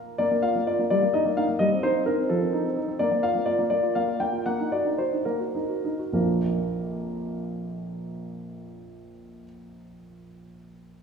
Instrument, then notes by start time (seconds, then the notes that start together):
grand piano
0.18 A#3 D5
0.31 A#3
0.42 F4 F5
0.56 A#3
0.67 F4 D5
0.79 A#3
0.90 G3 D5
1.02 A#3
1.14 D#4 D#5
1.25 A#3
1.37 D#4 F5
1.49 A#3
1.59 G3 D#5
1.72 C4
1.83 D#4 C5
1.95 C4
2.06 D#4 A#4
2.18 C4
2.29 F3 A4
2.41 C4
2.53 D#4
2.64 C4
2.76 D#4
2.88 C4
2.99 A#3 D5
3.12 A#3
3.23 F4 F5
3.35 A#3
3.46 F4 D5
3.58 A#3
3.70 A#3 D5
3.83 F4
3.95 A#3 F5
4.08 F4
4.20 A#3 G5
4.33 F4
4.46 A#3 F#5
4.60 D#4
4.72 F#4 D5
4.85 D#4
4.98 F#4 C5
5.12 D#4
5.25 A#3 A#4
5.40 F#4
5.55 D#4
5.69 F#4
5.85 D#4
5.99 F#4
6.13 A#1 F2 F3 A#3 D4 F4 A#4